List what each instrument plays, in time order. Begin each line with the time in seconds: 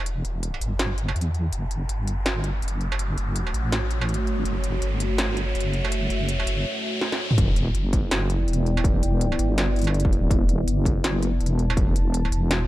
Already playing: wobble bass E1, analog synth pad B3 E4, riser
0.06 closed hi-hat
0.25 wobble bass E1, closed hi-hat
0.43 closed hi-hat
0.54 struck metal
0.61 wobble bass G1, closed hi-hat
0.79 snare, closed hi-hat
0.98 closed hi-hat
1.08 struck metal
1.16 wobble bass E2, closed hi-hat
1.21 closed hi-hat
1.35 closed hi-hat
1.53 wobble bass F#1, analog synth pad A3, closed hi-hat
1.71 analog synth pad F#4, closed hi-hat
1.89 wobble bass G1, closed hi-hat
1.93 analog synth pad C#5
2.08 closed hi-hat
2.26 snare, closed hi-hat
2.31 analog synth pad F#5
2.44 closed hi-hat
2.62 wobble bass F#1, closed hi-hat
2.68 closed hi-hat
2.81 closed hi-hat
2.92 struck metal
2.99 closed hi-hat
3.17 wobble bass F#1, closed hi-hat
3.36 closed hi-hat
3.47 struck metal
3.54 wobble bass A1, closed hi-hat
3.72 snare, closed hi-hat
3.91 closed hi-hat
4.01 struck metal
4.09 closed hi-hat
4.14 wobble bass G#1, closed hi-hat
4.27 closed hi-hat
4.45 wobble bass F#1, closed hi-hat
4.64 closed hi-hat
4.82 wobble bass G1, closed hi-hat
5.00 closed hi-hat
5.11 analog synth pad E5
5.18 snare, closed hi-hat
5.37 closed hi-hat
5.55 wobble bass F#1, closed hi-hat
5.60 closed hi-hat
5.73 closed hi-hat
5.85 struck metal
5.92 closed hi-hat
6.10 wobble bass F#1, closed hi-hat
6.29 closed hi-hat
6.40 struck metal
6.46 wobble bass F#1, closed hi-hat
7.01 snare
7.12 snare
7.31 mid tom
7.37 wobble bass E1, analog synth pad B3, kick, closed hi-hat
7.44 analog synth pad E4
7.56 analog synth pad D5, closed hi-hat
7.74 wobble bass F#1, closed hi-hat
7.93 kick, closed hi-hat
8.07 analog synth pad G5
8.11 snare, closed hi-hat
8.30 closed hi-hat
8.47 wobble bass E1, closed hi-hat
8.53 closed hi-hat
8.66 closed hi-hat
8.77 struck metal
8.84 kick, closed hi-hat
9.02 wobble bass E1, closed hi-hat
9.21 closed hi-hat
9.32 struck metal
9.39 wobble bass G1, closed hi-hat
9.58 snare, closed hi-hat
9.76 closed hi-hat
9.79 closed hi-hat
9.82 closed hi-hat
9.84 closed hi-hat, struck metal
9.94 closed hi-hat
10.00 closed hi-hat
10.05 kick
10.13 closed hi-hat
10.31 wobble bass E1, kick, closed hi-hat
10.49 closed hi-hat
10.67 wobble bass F#1, closed hi-hat
10.85 kick, closed hi-hat
10.94 analog synth pad A5
11.04 snare, closed hi-hat
11.23 closed hi-hat
11.40 wobble bass E1, closed hi-hat
11.46 closed hi-hat
11.59 closed hi-hat
11.70 struck metal
11.77 kick, closed hi-hat
11.95 wobble bass E1, closed hi-hat
12.14 closed hi-hat
12.25 struck metal
12.32 wobble bass E1, closed hi-hat
12.51 snare, closed hi-hat